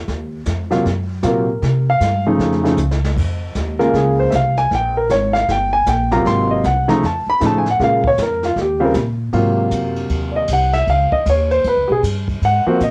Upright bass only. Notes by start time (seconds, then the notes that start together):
0.08 D#2
0.46 F2
0.86 F#2
1.24 A#2
1.62 C3
2.00 G2
2.39 F2
2.77 C#2
3.17 F2
3.55 D#2
3.94 C#2
4.33 C2
4.71 A#1
5.10 G#1
5.49 G1
5.86 A#1
6.25 G#1
6.64 C2
7.03 F2
7.26 muted upright bass stroke
7.41 A2
7.80 A#2
8.18 F2
8.56 D#2
8.95 A#2
9.33 G#2
9.71 F#2
10.09 D#2
10.49 C2
10.87 C#2
11.12 muted upright bass stroke
11.26 D#2
11.64 F2
11.77 C#2
11.89 B1
12.03 G2
12.42 G#2
12.66 muted upright bass stroke
12.80 A#2